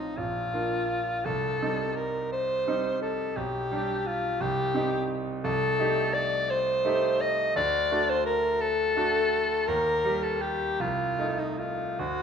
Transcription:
Already playing: grand piano A1 F3 C4 F4, alto saxophone D#4
0.17 grand piano A#1, alto saxophone F4
0.53 grand piano A#3 D4 F4
1.25 grand piano C2, alto saxophone A4
1.62 grand piano G3 C4 D#4
1.96 alto saxophone A#4
2.32 alto saxophone C5
2.67 grand piano G3 C4 D#4
3.02 alto saxophone A4
3.36 grand piano B1, alto saxophone G4
3.71 grand piano G3 D4 G4
4.07 alto saxophone F4
4.40 grand piano C2, alto saxophone G4
4.74 grand piano C4 D#4 G4
5.44 grand piano C2, alto saxophone A4
5.79 grand piano A3 D#4 G4
6.14 alto saxophone D5
6.50 alto saxophone C5
6.85 grand piano A3 D#4 G4
7.21 alto saxophone D#5
7.56 grand piano D2, alto saxophone D5
7.91 grand piano A3 D4 F#4
8.09 alto saxophone C5
8.26 alto saxophone A#4
8.61 alto saxophone A4
8.96 grand piano A3 D4 F#4
9.67 grand piano D#2, alto saxophone A#4
10.04 grand piano G3 A#3 G4
10.23 alto saxophone A4
10.41 alto saxophone G4
10.80 grand piano C2, alto saxophone F4
11.19 grand piano A3 D#4
11.39 alto saxophone D#4
11.59 alto saxophone F4
11.99 grand piano D2, alto saxophone F#4

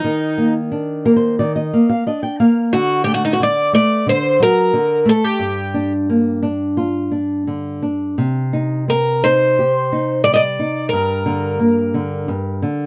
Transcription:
Already playing: twelve-string acoustic guitar D#4
0.04 nylon-string guitar D#3
0.38 nylon-string guitar A#3
0.72 nylon-string guitar D4
1.05 nylon-string guitar A#3 A#4
1.16 nylon-string guitar C5
1.39 nylon-string guitar D#3 D5
1.56 nylon-string guitar D#5
1.73 nylon-string guitar A#3
1.89 nylon-string guitar F5
2.06 nylon-string guitar D4 D#5
2.23 nylon-string guitar G5
2.40 nylon-string guitar A#3 F5
2.73 nylon-string guitar D3, twelve-string acoustic guitar F#4
3.04 nylon-string guitar A3, twelve-string acoustic guitar G4
3.14 twelve-string acoustic guitar F#4
3.25 twelve-string acoustic guitar D#4
3.33 twelve-string acoustic guitar F#4
3.40 nylon-string guitar D3, twelve-string acoustic guitar D5
3.73 nylon-string guitar A3, twelve-string acoustic guitar D5
4.06 nylon-string guitar D3, twelve-string acoustic guitar C5
4.40 nylon-string guitar F#3, twelve-string acoustic guitar A#4
4.73 nylon-string guitar D3
5.05 nylon-string guitar A3, twelve-string acoustic guitar A4
5.24 twelve-string acoustic guitar G4
5.39 nylon-string guitar G2
5.74 nylon-string guitar D4
6.09 nylon-string guitar A#3
6.43 nylon-string guitar D4
6.77 nylon-string guitar F4
7.11 nylon-string guitar D4
7.47 nylon-string guitar D3
7.83 nylon-string guitar D4
8.18 nylon-string guitar C3
8.53 nylon-string guitar D#4
8.88 nylon-string guitar C4, twelve-string acoustic guitar A#4
9.24 nylon-string guitar D#4, twelve-string acoustic guitar C5
9.59 nylon-string guitar G4
9.92 nylon-string guitar D#4
10.24 nylon-string guitar G3, twelve-string acoustic guitar D5
10.34 twelve-string acoustic guitar D5 D#5
10.59 nylon-string guitar D#4
10.89 twelve-string acoustic guitar A#4
10.93 nylon-string guitar G2
11.26 nylon-string guitar D3
11.59 nylon-string guitar A#3
11.94 nylon-string guitar D3
12.28 nylon-string guitar G2
12.62 nylon-string guitar D3

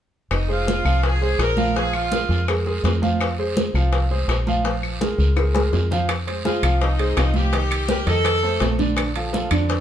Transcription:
0.31 fingered electric bass F1, horn section D#4, high bongo, high conga, long guiro, claves
0.48 grand piano G#3 G#4 C5, horn section F4, high conga
0.67 high bongo, high conga, short guiro
0.85 fingered electric bass C2, grand piano F3 F4 F5, high conga, short guiro, claves
1.03 horn section G#4, high bongo, high conga, long guiro
1.21 grand piano G#3 G#4 C5, high conga
1.39 fingered electric bass A#1, horn section A#4, high bongo, low bongo, high conga, short guiro, claves
1.57 grand piano F3 F4 F5, high conga, short guiro
1.75 grand piano F3 F4 F5, horn section G#4, high bongo, high conga, long guiro
1.93 horn section F4, high conga, claves
2.12 grand piano G#3 G#4 A#4, high bongo, high conga, short guiro
2.29 fingered electric bass F2, high bongo, high conga, short guiro
2.48 grand piano G#3 G#4 A#4, high bongo, high conga, long guiro, claves
2.66 grand piano G#3 G#4 A#4, high bongo, high conga
2.84 fingered electric bass F2, high bongo, low bongo, high conga, short guiro
3.02 grand piano F3 F4 F5, high bongo, high conga, short guiro
3.20 high bongo, high conga, long guiro, claves
3.38 grand piano G#3 G#4 C5, high conga
3.57 high bongo, high conga, short guiro
3.74 fingered electric bass C2, grand piano F3 F4 F5, high conga, short guiro, claves
3.93 high bongo, high conga, long guiro
4.11 grand piano G#3 G#4 C5, high conga
4.28 fingered electric bass A#1, high bongo, low bongo, high conga, short guiro, claves
4.47 grand piano F3 F4 F5, high conga, short guiro
4.64 grand piano F3 F4 F5, high bongo, high conga, long guiro
4.83 high conga, claves
5.01 grand piano G#3 G#4 A#4, high bongo, high conga, short guiro
5.18 fingered electric bass C#2, high bongo, high conga, short guiro
5.37 grand piano G#3 G#4 A#4, high bongo, high conga, long guiro, claves
5.55 grand piano G#3 G#4 A#4, high bongo, high conga
5.73 fingered electric bass F2, low bongo, short guiro
5.91 grand piano F3 F4 F5, low bongo, low conga, short guiro
6.09 high bongo, high conga, high timbale, long guiro, claves
6.27 grand piano G#3 G#4 C5, high conga, high timbale
6.45 grand piano G#3 G#4 C5, horn section F4, high bongo, high conga, low timbale, short guiro
6.63 fingered electric bass C2, grand piano F3 F4 F5, high conga, high timbale, short guiro, claves
6.81 horn section D#4, high bongo, high conga, long guiro
6.99 grand piano G#3 G#4 C5, high conga, high timbale
7.17 fingered electric bass C2, grand piano F3 F4 F5, high bongo, low bongo, high conga, high timbale, low timbale, short guiro, claves
7.34 horn section G4, high conga, short guiro
7.52 grand piano D#3 D#4 D#5, high bongo, high conga, high timbale, long guiro
7.71 high conga, high timbale, claves
7.88 grand piano G3 G4 A#4, horn section G4, high bongo, high conga, low timbale, short guiro
8.06 fingered electric bass F2, grand piano D#3 D#4 D#5, horn section A4, high bongo, high conga, high timbale, short guiro
8.25 high bongo, high conga, high timbale, long guiro, claves
8.43 grand piano A3 A4 C5, high bongo, high conga
8.60 fingered electric bass A#1, high bongo, low bongo, high conga, high timbale, low timbale, short guiro
8.79 grand piano D3 D4 D5, high bongo, high conga, short guiro
8.96 high bongo, high conga, high timbale, long guiro, claves
9.16 grand piano F3 F4 A4, high conga, high timbale
9.33 grand piano F3 F4 A4, high bongo, high conga, low timbale, short guiro
9.51 fingered electric bass F2, grand piano D3 D4 D5, high conga, high timbale, short guiro, claves
9.69 high bongo, high conga, long guiro

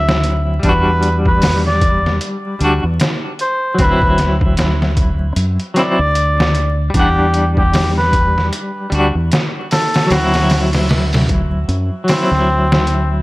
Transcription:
Already playing: fingered electric bass D2, clean electric guitar F#3 C4 E4, muted trumpet E5
0.09 snare
0.24 closed hi-hat
0.59 fingered electric bass E2, clean electric guitar G3, kick, closed hi-hat
0.64 clean electric guitar D4, muted trumpet B4
0.69 clean electric guitar F#4
1.03 closed hi-hat
1.26 muted trumpet B4, kick
1.42 snare, open hi-hat
1.67 muted trumpet D5, snare
1.81 kick, closed hi-hat
2.06 snare
2.21 closed hi-hat
2.59 fingered electric bass D2, clean electric guitar G3 D4, closed hi-hat
2.64 clean electric guitar F#4
2.84 fingered electric bass E2
3.00 snare, closed hi-hat
3.39 muted trumpet C5, closed hi-hat
3.74 clean electric guitar F#3
3.79 fingered electric bass D2, clean electric guitar C4, muted trumpet B4, kick, closed hi-hat
3.84 clean electric guitar E4
4.02 kick
4.18 snare, closed hi-hat
4.41 kick
4.57 snare, closed hi-hat
4.82 snare
4.97 kick, closed hi-hat
5.36 fingered electric bass F#2, closed hi-hat
5.60 closed hi-hat
5.74 clean electric guitar F#3 C4, muted trumpet D5, snare, closed hi-hat
5.79 clean electric guitar E4
5.99 fingered electric bass D2
6.15 closed hi-hat
6.40 snare
6.55 closed hi-hat
6.90 clean electric guitar G3
6.94 fingered electric bass E2, clean electric guitar D4, muted trumpet G4, kick, closed hi-hat
6.99 clean electric guitar F#5
7.34 closed hi-hat
7.57 muted trumpet G4, kick
7.73 snare, open hi-hat
7.98 muted trumpet B4, snare
8.13 kick, closed hi-hat
8.38 snare
8.53 closed hi-hat
8.90 fingered electric bass D2, clean electric guitar G3 D4, closed hi-hat
8.95 clean electric guitar F#4
9.15 fingered electric bass E2
9.32 snare, closed hi-hat
9.71 muted trumpet A4, snare, open hi-hat
9.94 snare, open hi-hat
10.07 fingered electric bass D2, clean electric guitar F#3, open hi-hat
10.11 clean electric guitar C4, muted trumpet F#4, snare
10.16 clean electric guitar E4
10.34 snare, open hi-hat
10.50 snare, open hi-hat
10.73 snare, open hi-hat
10.89 snare, open hi-hat
11.13 snare, open hi-hat
11.29 kick, closed hi-hat
11.68 fingered electric bass F#2, closed hi-hat
12.04 clean electric guitar F#3, open hi-hat
12.09 clean electric guitar C4, muted trumpet C4, snare
12.14 clean electric guitar E4
12.31 fingered electric bass D2, snare
12.72 snare
12.87 closed hi-hat

